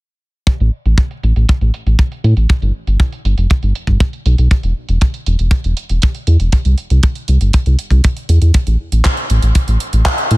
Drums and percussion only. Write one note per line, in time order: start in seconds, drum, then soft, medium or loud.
0.47 kick loud
0.47 closed hi-hat medium
0.60 closed hi-hat soft
0.86 closed hi-hat soft
0.98 kick loud
0.98 closed hi-hat medium
1.11 closed hi-hat soft
1.23 closed hi-hat medium
1.36 closed hi-hat soft
1.49 kick loud
1.49 closed hi-hat medium
1.61 closed hi-hat soft
1.74 closed hi-hat medium
1.87 closed hi-hat soft
1.99 kick loud
1.99 closed hi-hat medium
2.12 closed hi-hat soft
2.24 closed hi-hat medium
2.37 closed hi-hat soft
2.49 kick loud
2.49 closed hi-hat medium
2.62 closed hi-hat soft
2.87 closed hi-hat soft
3.00 kick loud
3.00 closed hi-hat medium
3.12 closed hi-hat soft
3.25 closed hi-hat medium
3.38 closed hi-hat soft
3.50 kick loud
3.50 closed hi-hat medium
3.63 closed hi-hat soft
3.75 closed hi-hat medium
3.87 kick medium
3.87 closed hi-hat soft
4.00 kick loud
4.00 closed hi-hat medium
4.13 closed hi-hat soft
4.26 closed hi-hat medium
4.38 closed hi-hat soft
4.51 kick loud
4.51 closed hi-hat medium
4.63 closed hi-hat soft
4.89 closed hi-hat soft
5.01 kick loud
5.01 closed hi-hat medium
5.14 closed hi-hat soft
5.26 closed hi-hat medium
5.39 closed hi-hat soft
5.51 kick loud
5.51 closed hi-hat medium
5.64 closed hi-hat soft
5.77 closed hi-hat medium
5.89 closed hi-hat soft
6.02 kick loud
6.02 closed hi-hat medium
6.15 closed hi-hat soft
6.27 closed hi-hat medium
6.40 closed hi-hat soft
6.52 kick loud
6.52 closed hi-hat medium
6.65 closed hi-hat soft
6.78 closed hi-hat soft
6.90 closed hi-hat soft
7.03 kick loud
7.03 closed hi-hat medium
7.15 closed hi-hat soft
7.28 closed hi-hat medium
7.41 closed hi-hat soft
7.53 kick loud
7.53 closed hi-hat medium
7.66 closed hi-hat soft
7.79 closed hi-hat medium
7.91 kick medium
7.91 closed hi-hat soft
8.04 kick loud
8.04 closed hi-hat medium
8.17 closed hi-hat soft
8.29 closed hi-hat medium
8.42 closed hi-hat soft
8.54 kick loud
8.54 closed hi-hat medium
8.67 closed hi-hat soft
8.92 closed hi-hat soft
9.05 kick loud
9.05 clap loud
9.05 closed hi-hat medium
9.17 closed hi-hat soft
9.30 closed hi-hat medium
9.42 closed hi-hat soft
9.55 kick loud
9.55 closed hi-hat medium
9.68 closed hi-hat soft
9.80 closed hi-hat medium
9.93 closed hi-hat soft
10.05 kick loud
10.05 clap loud
10.05 closed hi-hat medium
10.18 closed hi-hat soft
10.31 closed hi-hat medium